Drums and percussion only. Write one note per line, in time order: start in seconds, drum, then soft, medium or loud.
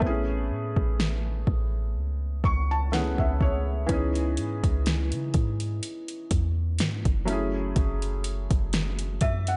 0.02 kick loud
0.76 kick loud
1.00 snare loud
1.47 kick medium
2.44 kick loud
2.93 snare loud
3.18 kick medium
3.41 kick loud
3.89 kick loud
3.89 closed hi-hat medium
4.15 closed hi-hat soft
4.37 closed hi-hat medium
4.64 kick loud
4.64 closed hi-hat soft
4.86 snare loud
4.86 closed hi-hat medium
5.12 closed hi-hat medium
5.34 kick loud
5.34 closed hi-hat medium
5.60 closed hi-hat medium
5.83 closed hi-hat medium
6.08 closed hi-hat soft
6.31 kick medium
6.31 closed hi-hat medium
6.79 snare loud
6.79 closed hi-hat medium
7.05 kick medium
7.05 closed hi-hat soft
7.28 closed hi-hat medium
7.76 kick loud
7.76 closed hi-hat medium
8.02 closed hi-hat medium
8.24 closed hi-hat medium
8.51 kick loud
8.51 closed hi-hat medium
8.73 snare loud
8.73 closed hi-hat medium
8.99 closed hi-hat medium
9.21 kick loud
9.21 closed hi-hat medium
9.47 closed hi-hat medium